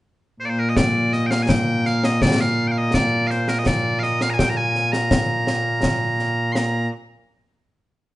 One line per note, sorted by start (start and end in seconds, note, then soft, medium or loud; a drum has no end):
0.40 6.89 A#2 medium
0.40 6.89 A#3 medium
0.40 0.45 C5 medium
0.45 0.59 C5 medium
0.45 0.49 D5 medium
0.59 0.69 A#4 medium
0.69 0.77 D#5 medium
0.77 1.13 D5 medium
0.77 concert bass drum medium
0.77 snare medium
1.13 1.26 D#5 medium
1.13 snare soft
1.26 1.31 G5 medium
1.31 1.43 F5 medium
1.31 snare medium
1.43 1.49 G#5 medium
1.49 1.86 G5 loud
1.49 concert bass drum medium
1.49 snare medium
1.85 2.04 F5 medium
1.85 snare soft
2.04 2.22 D#5 medium
2.04 snare medium
2.22 2.41 D5 medium
2.22 concert bass drum medium
2.22 snare loud
2.41 2.68 F5 medium
2.68 2.72 G5 medium
2.72 2.78 F5 medium
2.78 2.94 D#5 medium
2.94 3.27 D5 loud
2.94 concert bass drum soft
2.94 snare medium
3.27 3.49 C5 medium
3.27 3.31 F5 medium
3.27 snare soft
3.48 3.59 A#4 medium
3.48 snare medium
3.59 3.67 D#5 medium
3.66 3.99 D5 medium
3.66 concert bass drum medium
3.66 snare medium
3.99 4.22 D#5 loud
3.99 4.03 F5 loud
3.99 snare soft
4.21 4.30 F5 loud
4.21 snare medium
4.30 4.39 G#5 medium
4.30 4.34 A#5 medium
4.39 4.49 G5 medium
4.39 concert bass drum medium
4.39 snare medium
4.49 4.57 A#5 medium
4.57 4.92 G#5 loud
4.75 snare soft
4.92 6.52 A#5 medium
4.92 snare medium
5.11 concert bass drum medium
5.11 snare loud
5.47 snare medium
5.83 concert bass drum medium
5.83 snare medium
6.19 snare soft
6.52 6.89 A#5 medium
6.52 6.56 C6 medium
6.52 snare medium